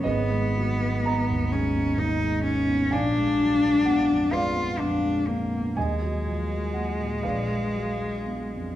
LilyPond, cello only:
\new Staff \with { instrumentName = "Cello" } { \time 6/8 \key bes \phrygian \tempo 4. = 41 ces'4. des'8 ees'8 des'8 | d'4. f'8 d'8 bes8 | aes2. | }